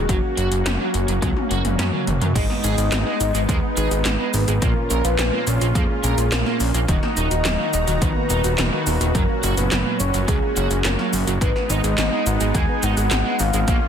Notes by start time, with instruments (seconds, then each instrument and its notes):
Already playing: supersaw synth F#4, soft synth lead G#4
0.09 analog synth bass F#1, overdriven electric guitar F#3, supersaw synth A#3 C#4, soft synth lead F#4, kick, closed hi-hat
0.37 analog synth bass F#1, overdriven electric guitar F#4, closed hi-hat
0.52 analog synth bass F#1, closed hi-hat
0.65 analog synth bass F#1, overdriven electric guitar C#4, snare, closed hi-hat
0.80 overdriven electric guitar F#3
0.94 analog synth bass F#1, closed hi-hat
1.08 analog synth bass F#1, overdriven electric guitar F#3, closed hi-hat
1.22 analog synth bass C#2, overdriven electric guitar F#3, kick, closed hi-hat, high tom
1.37 high tom
1.51 analog synth bass F#1, overdriven electric guitar F#4, closed hi-hat
1.65 analog synth bass F#1, closed hi-hat, mid tom
1.79 analog synth bass F#2, overdriven electric guitar C#4, snare, closed hi-hat, mid tom
1.93 overdriven electric guitar F#3
2.07 analog synth bass F#1, closed hi-hat, mid tom
2.21 analog synth bass F#2, overdriven electric guitar F#3, closed hi-hat, mid tom
2.35 analog synth bass G#1, synth arpeggio sound G#3, supersaw synth G#3 B3 D#4, overdriven electric guitar G#3, soft synth lead D#5, kick, closed hi-hat, crash, cabasa
2.50 synth arpeggio sound B3, snare
2.64 analog synth bass G#1, synth arpeggio sound D#4, overdriven electric guitar G#4, closed hi-hat, cabasa
2.78 analog synth bass G#1, synth arpeggio sound G#4, closed hi-hat, cabasa
2.92 analog synth bass G#1, synth arpeggio sound G#3, overdriven electric guitar D#4, snare, clap, closed hi-hat, cabasa
3.06 overdriven electric guitar G#3, synth arpeggio sound B3
3.20 analog synth bass G#1, synth arpeggio sound D#4, closed hi-hat, cabasa
3.34 analog synth bass G#1, overdriven electric guitar G#3, synth arpeggio sound G#4, closed hi-hat, cabasa
3.49 analog synth bass D#2, overdriven electric guitar G#3, synth arpeggio sound G#3, soft synth lead B4, kick, closed hi-hat, cabasa
3.63 synth arpeggio sound B3
3.77 analog synth bass G#1, synth arpeggio sound D#4, overdriven electric guitar G#4, closed hi-hat, cabasa
3.91 analog synth bass G#1, synth arpeggio sound G#4, closed hi-hat, cabasa
4.05 analog synth bass G#1, synth arpeggio sound G#3, overdriven electric guitar D#4, snare, clap, closed hi-hat, cabasa
4.19 overdriven electric guitar G#3, synth arpeggio sound B3
4.34 analog synth bass G#1, synth arpeggio sound D#4, open hi-hat, cabasa
4.48 analog synth bass G#1, overdriven electric guitar G#3, synth arpeggio sound G#4, closed hi-hat, cabasa
4.62 analog synth bass A#1, supersaw synth A#2 C#4 F4, synth arpeggio sound F3, overdriven electric guitar A#3, soft synth lead A#4, kick, closed hi-hat, cabasa
4.76 synth arpeggio sound A#3
4.90 analog synth bass A#1, synth arpeggio sound C#4, overdriven electric guitar A#4, closed hi-hat, cabasa
5.04 analog synth bass A#1, synth arpeggio sound F4, soft synth lead B4, closed hi-hat, cabasa
5.19 analog synth bass A#1, synth arpeggio sound F3, overdriven electric guitar F4, snare, clap, closed hi-hat, cabasa
5.33 overdriven electric guitar A#3, synth arpeggio sound A#3
5.47 analog synth bass A#1, synth arpeggio sound C#4, soft synth lead C#5, closed hi-hat, cabasa
5.61 analog synth bass A#1, overdriven electric guitar A#3, synth arpeggio sound F4, closed hi-hat, cabasa
5.75 analog synth bass F2, synth arpeggio sound F3, overdriven electric guitar A#3, soft synth lead G#4, kick, closed hi-hat, cabasa
5.90 synth arpeggio sound A#3
6.04 analog synth bass A#1, synth arpeggio sound C#4, overdriven electric guitar A#4, closed hi-hat, cabasa
6.18 analog synth bass A#1, synth arpeggio sound F4, closed hi-hat, cabasa
6.32 analog synth bass A#1, synth arpeggio sound F3, overdriven electric guitar F4, soft synth lead A#4, snare, clap, closed hi-hat, cabasa
6.46 overdriven electric guitar A#3, synth arpeggio sound A#3, snare
6.60 analog synth bass A#1, synth arpeggio sound C#4, open hi-hat, cabasa
6.74 analog synth bass A#1, overdriven electric guitar A#3, synth arpeggio sound F4, closed hi-hat, cabasa
6.88 analog synth bass D#1, overdriven electric guitar D#3, supersaw synth D#3 D#4 F#4 A#5, synth arpeggio sound F#3, soft synth lead D#5, kick, closed hi-hat, cabasa
7.03 synth arpeggio sound A#3, snare
7.17 analog synth bass D#1, synth arpeggio sound D#4, overdriven electric guitar D#4, closed hi-hat, cabasa
7.31 analog synth bass D#1, synth arpeggio sound F#4, closed hi-hat, cabasa
7.45 analog synth bass D#1, synth arpeggio sound F#3, overdriven electric guitar A#3, snare, clap, closed hi-hat, cabasa
7.59 overdriven electric guitar D#3, synth arpeggio sound A#3
7.73 analog synth bass D#1, synth arpeggio sound D#4, closed hi-hat, cabasa
7.87 analog synth bass D#1, overdriven electric guitar D#3, synth arpeggio sound F#4, closed hi-hat, cabasa
8.02 analog synth bass A#1, overdriven electric guitar D#3, synth arpeggio sound F#3, soft synth lead B4, kick, closed hi-hat, cabasa
8.16 synth arpeggio sound A#3
8.30 analog synth bass D#1, synth arpeggio sound D#4, overdriven electric guitar D#4, closed hi-hat, cabasa
8.44 analog synth bass D#1, synth arpeggio sound F#4, closed hi-hat, cabasa
8.58 analog synth bass D#1, synth arpeggio sound F#3, overdriven electric guitar A#3, snare, clap, closed hi-hat, cabasa
8.73 overdriven electric guitar D#3, synth arpeggio sound A#3
8.87 analog synth bass D#1, synth arpeggio sound D#4, open hi-hat, cabasa
9.01 analog synth bass D#1, overdriven electric guitar D#3, synth arpeggio sound F#4, closed hi-hat, cabasa
9.15 analog synth bass F#1, supersaw synth A#2 C#4, synth arpeggio sound F#3, overdriven electric guitar F#3, soft synth lead A#4, kick, closed hi-hat, cabasa
9.29 synth arpeggio sound A#3
9.43 analog synth bass F#1, synth arpeggio sound C#4, overdriven electric guitar F#4, closed hi-hat, cabasa
9.57 analog synth bass F#1, synth arpeggio sound F#4, soft synth lead B4, closed hi-hat, cabasa
9.72 analog synth bass F#1, synth arpeggio sound F#3, overdriven electric guitar C#4, snare, clap, closed hi-hat, cabasa
9.86 overdriven electric guitar F#3, synth arpeggio sound A#3
10.00 analog synth bass F#1, synth arpeggio sound C#4, soft synth lead C#5, closed hi-hat, cabasa
10.14 analog synth bass F#1, overdriven electric guitar F#3, synth arpeggio sound F#4, closed hi-hat, cabasa
10.28 analog synth bass C#2, synth arpeggio sound F#3, overdriven electric guitar F#3, soft synth lead G#4, kick, closed hi-hat, cabasa
10.42 synth arpeggio sound A#3
10.56 analog synth bass F#1, synth arpeggio sound C#4, overdriven electric guitar F#4, closed hi-hat, cabasa
10.71 analog synth bass F#1, synth arpeggio sound F#4, closed hi-hat, cabasa
10.85 analog synth bass F#1, synth arpeggio sound F#3, overdriven electric guitar C#4, soft synth lead A#4, snare, clap, closed hi-hat, cabasa
10.99 overdriven electric guitar F#3, synth arpeggio sound A#3, snare
11.13 analog synth bass F#1, synth arpeggio sound C#4, open hi-hat, cabasa
11.27 analog synth bass F#1, overdriven electric guitar F#3, synth arpeggio sound F#4, closed hi-hat, cabasa
11.41 analog synth bass G#1, supersaw synth G#3 B3 D#4, synth arpeggio sound G#3, overdriven electric guitar G#3, soft synth lead B4, kick, closed hi-hat, cabasa
11.55 synth arpeggio sound B3, snare
11.70 analog synth bass G#1, overdriven electric guitar D#4, synth arpeggio sound D#4, soft synth lead D#5, closed hi-hat, cabasa
11.84 analog synth bass G#1, synth arpeggio sound G#4, closed hi-hat, cabasa
11.98 analog synth bass G#1, synth arpeggio sound G#3, overdriven electric guitar D#4, snare, clap, closed hi-hat, cabasa
12.12 overdriven electric guitar G#3, synth arpeggio sound B3
12.26 analog synth bass G#1, synth arpeggio sound D#4, soft synth lead F#5, closed hi-hat, cabasa
12.40 analog synth bass G#1, overdriven electric guitar G#3, synth arpeggio sound G#4, closed hi-hat, cabasa
12.54 analog synth bass D#2, overdriven electric guitar G#3, synth arpeggio sound G#3, soft synth lead G#5, kick, closed hi-hat, cabasa
12.69 synth arpeggio sound B3
12.83 analog synth bass G#1, overdriven electric guitar D#4, synth arpeggio sound D#4, soft synth lead F#5, closed hi-hat, cabasa
12.97 analog synth bass G#1, synth arpeggio sound G#4, closed hi-hat, cabasa
13.11 analog synth bass G#1, synth arpeggio sound G#3, overdriven electric guitar D#4, snare, clap, closed hi-hat, cabasa
13.25 overdriven electric guitar G#3, synth arpeggio sound B3
13.39 analog synth bass G#1, synth arpeggio sound D#4, soft synth lead F5, open hi-hat, cabasa
13.53 analog synth bass G#1, overdriven electric guitar G#3, synth arpeggio sound G#4, closed hi-hat, cabasa
13.68 analog synth bass A#1, synth arpeggio sound F3, overdriven electric guitar A#3, supersaw synth A#3 C#4 F4, kick, closed hi-hat, cabasa
13.82 synth arpeggio sound A#3